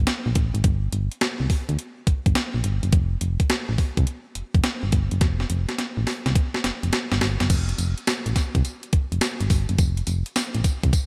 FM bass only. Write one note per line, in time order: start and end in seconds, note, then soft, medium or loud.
0.26 0.34 A#1 loud
0.36 0.52 A1 medium
0.54 0.63 G#1 loud
0.64 0.88 G1 loud
0.93 1.09 G1 medium
1.40 1.48 C2 medium
1.69 1.77 D2 loud
2.07 2.15 G1 soft
2.26 2.34 G1 medium
2.54 2.63 A#1 medium
2.64 2.80 G1 medium
2.83 2.91 F#1 loud
2.93 3.17 F1 loud
3.21 3.37 F1 loud
3.69 3.77 A1 medium
3.97 4.06 C2 loud
4.36 4.43 F1 medium
4.55 4.63 F1 medium
4.83 4.91 G1 medium
4.93 5.09 G1 loud
5.12 5.20 F#1 loud
5.21 5.45 F1 loud
5.50 5.66 F1 loud
5.97 6.06 A1 medium
6.26 6.34 C2 loud
6.64 6.72 F1 medium
6.83 6.91 F1 medium
7.12 7.20 G1 medium
7.21 7.37 G1 medium
7.40 7.48 F#1 loud
7.50 7.74 F1 loud
7.78 7.94 F1 loud
8.26 8.34 A1 medium
8.55 8.63 C2 loud
8.93 9.01 F1 medium
9.12 9.20 F1 medium
9.41 9.49 G1 loud
9.50 9.66 G1 medium
9.69 9.77 F#1 loud
9.79 10.03 F1 loud
10.07 10.23 F1 loud
10.55 10.63 A1 loud
10.84 10.92 C2 loud